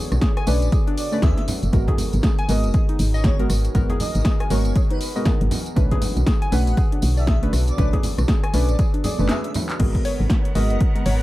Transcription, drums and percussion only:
0.12 cross-stick medium
0.12 closed hi-hat soft
0.12 tambourine medium
0.21 kick loud
0.21 snare loud
0.21 closed hi-hat medium
0.21 tambourine soft
0.37 cross-stick medium
0.37 closed hi-hat soft
0.47 open hi-hat loud
0.47 tambourine loud
0.62 closed hi-hat soft
0.62 tambourine medium
0.72 kick loud
0.72 closed hi-hat medium
0.72 tambourine soft
0.87 closed hi-hat medium
0.97 open hi-hat loud
0.97 tambourine loud
1.12 tambourine medium
1.22 kick loud
1.22 snare loud
1.22 closed hi-hat medium
1.22 tambourine soft
1.22 high conga loud
1.37 snare soft
1.37 closed hi-hat medium
1.48 open hi-hat loud
1.48 tambourine loud
1.48 low conga medium
1.63 closed hi-hat soft
1.63 tambourine medium
1.73 kick loud
1.73 closed hi-hat medium
1.73 tambourine soft
1.88 kick medium
1.88 closed hi-hat medium
1.88 high conga loud
1.98 open hi-hat loud
1.98 tambourine medium
1.98 low conga medium
2.13 closed hi-hat soft
2.13 tambourine medium
2.23 kick loud
2.23 snare loud
2.23 closed hi-hat medium
2.23 tambourine soft
2.38 closed hi-hat soft
2.49 open hi-hat loud
2.49 tambourine medium
2.64 closed hi-hat soft
2.64 tambourine soft
2.74 kick loud
2.74 closed hi-hat medium
2.74 tambourine soft
2.89 closed hi-hat medium
2.99 open hi-hat loud
2.99 tambourine medium
3.14 tambourine soft
3.24 kick loud
3.24 snare loud
3.24 closed hi-hat medium
3.24 tambourine soft
3.24 high conga medium
3.39 closed hi-hat medium
3.50 cross-stick medium
3.50 open hi-hat loud
3.50 tambourine loud
3.65 closed hi-hat soft
3.65 tambourine soft
3.75 kick loud
3.75 closed hi-hat medium
3.75 tambourine soft
3.90 closed hi-hat medium
3.90 high conga loud
4.00 open hi-hat loud
4.00 tambourine medium
4.00 low conga medium
4.15 closed hi-hat soft
4.15 tambourine medium
4.25 kick loud
4.25 snare loud
4.25 closed hi-hat medium
4.25 tambourine soft
4.40 cross-stick medium
4.40 closed hi-hat medium
4.50 open hi-hat loud
4.50 tambourine loud
4.50 high conga medium
4.65 closed hi-hat soft
4.65 tambourine medium
4.76 kick loud
4.76 closed hi-hat medium
4.76 tambourine soft
4.91 closed hi-hat medium
5.01 open hi-hat loud
5.01 tambourine medium
5.16 tambourine medium
5.25 kick loud
5.25 snare loud
5.25 closed hi-hat medium
5.25 tambourine soft
5.25 high conga loud
5.41 closed hi-hat medium
5.51 open hi-hat loud
5.51 tambourine medium
5.51 low conga medium
5.66 closed hi-hat soft
5.66 tambourine medium
5.76 kick loud
5.76 closed hi-hat medium
5.76 tambourine soft
5.91 kick medium
5.91 closed hi-hat medium
5.91 high conga loud
6.02 open hi-hat loud
6.02 tambourine medium
6.02 low conga medium
6.17 closed hi-hat soft
6.17 tambourine medium
6.26 kick loud
6.26 snare loud
6.26 closed hi-hat medium
6.26 tambourine soft
6.42 closed hi-hat medium
6.52 open hi-hat loud
6.52 tambourine medium
6.52 high conga medium
6.67 closed hi-hat soft
6.67 tambourine medium
6.77 kick loud
6.77 closed hi-hat medium
6.77 tambourine soft
6.92 closed hi-hat medium
7.02 open hi-hat loud
7.02 tambourine medium
7.17 tambourine soft
7.27 kick loud
7.27 snare loud
7.27 closed hi-hat medium
7.27 tambourine soft
7.27 high conga medium
7.43 closed hi-hat medium
7.53 cross-stick medium
7.53 open hi-hat loud
7.53 tambourine medium
7.67 closed hi-hat soft
7.67 tambourine soft
7.78 kick loud
7.78 closed hi-hat medium
7.78 tambourine soft
7.93 kick medium
7.93 closed hi-hat medium
7.93 high conga medium
8.03 open hi-hat loud
8.03 tambourine loud
8.03 low conga medium
8.18 cross-stick medium
8.18 closed hi-hat soft
8.18 tambourine medium
8.28 kick loud
8.28 snare loud
8.28 closed hi-hat medium
8.28 tambourine soft
8.44 cross-stick medium
8.44 closed hi-hat medium
8.54 open hi-hat loud
8.54 tambourine loud
8.69 closed hi-hat soft
8.69 tambourine soft
8.79 kick loud
8.79 closed hi-hat medium
8.79 tambourine soft
8.94 closed hi-hat medium
9.04 open hi-hat loud
9.04 tambourine medium
9.04 low conga medium
9.19 tambourine soft
9.29 snare loud
9.29 clap loud
9.29 closed hi-hat medium
9.29 tambourine soft
9.29 high conga medium
9.44 closed hi-hat medium
9.54 open hi-hat loud
9.54 tambourine medium
9.54 low conga loud
9.69 clap medium
9.69 closed hi-hat soft
9.69 tambourine soft
9.80 kick loud
9.80 closed hi-hat medium
9.80 crash loud
9.95 kick medium
9.95 closed hi-hat medium
10.05 open hi-hat loud
10.30 kick loud
10.30 snare loud
10.30 closed hi-hat medium
10.45 closed hi-hat medium
10.55 open hi-hat loud
10.70 closed hi-hat soft
10.81 kick loud
10.81 closed hi-hat medium
10.96 closed hi-hat medium
11.06 open hi-hat loud

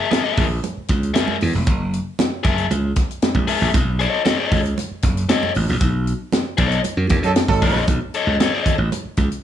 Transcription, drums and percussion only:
0.11 snare loud
0.11 closed hi-hat medium
0.11 high conga medium
0.37 kick loud
0.37 open hi-hat medium
0.37 low conga medium
0.64 closed hi-hat medium
0.64 muted conga medium
0.88 kick medium
0.88 snare soft
0.88 closed hi-hat medium
1.03 closed hi-hat soft
1.15 snare loud
1.15 closed hi-hat loud
1.15 high conga medium
1.28 high conga medium
1.41 open hi-hat medium
1.53 snare soft
1.53 high conga medium
1.67 kick loud
1.67 closed hi-hat medium
1.67 muted conga medium
1.93 closed hi-hat medium
2.19 snare loud
2.19 closed hi-hat medium
2.19 high conga medium
2.44 kick loud
2.44 closed hi-hat medium
2.58 closed hi-hat medium
2.71 closed hi-hat medium
2.71 muted conga medium
2.96 kick medium
2.96 snare soft
2.96 closed hi-hat medium
2.96 muted conga soft
3.11 closed hi-hat medium
3.22 snare loud
3.22 closed hi-hat loud
3.22 high conga medium
3.35 kick medium
3.35 high conga medium
3.48 open hi-hat medium
3.61 snare soft
3.61 high conga medium
3.74 kick loud
3.74 closed hi-hat medium
3.74 muted conga medium
4.00 closed hi-hat medium
4.26 snare loud
4.26 closed hi-hat medium
4.26 high conga medium
4.52 kick loud
4.52 open hi-hat medium
4.52 low conga medium
4.65 closed hi-hat medium
4.78 closed hi-hat medium
4.78 muted conga medium
5.02 kick medium
5.02 snare soft
5.02 closed hi-hat medium
5.02 muted conga soft
5.17 closed hi-hat medium
5.29 snare loud
5.29 closed hi-hat loud
5.29 high conga medium
5.43 high conga medium
5.55 open hi-hat medium
5.68 snare soft
5.68 high conga medium
5.81 kick loud
5.81 closed hi-hat medium
5.81 muted conga medium
6.07 closed hi-hat medium
6.32 snare loud
6.32 closed hi-hat medium
6.32 high conga medium
6.58 kick loud
6.58 closed hi-hat medium
6.71 closed hi-hat medium
6.84 closed hi-hat medium
6.84 muted conga medium
7.09 kick medium
7.09 snare soft
7.09 closed hi-hat medium
7.09 muted conga soft
7.09 low conga medium
7.24 closed hi-hat medium
7.36 snare loud
7.36 closed hi-hat loud
7.36 high conga medium
7.48 kick medium
7.48 high conga medium
7.62 kick loud
7.62 open hi-hat medium
7.75 snare soft
7.75 high conga medium
7.88 kick loud
7.88 closed hi-hat medium
7.88 muted conga medium
8.14 closed hi-hat medium
8.40 snare loud
8.40 closed hi-hat medium
8.40 high conga medium
8.66 kick medium
8.66 closed hi-hat medium
8.66 low conga medium
8.92 closed hi-hat medium
8.92 muted conga medium
9.17 kick medium
9.17 snare soft
9.17 closed hi-hat medium
9.17 muted conga soft
9.32 closed hi-hat soft

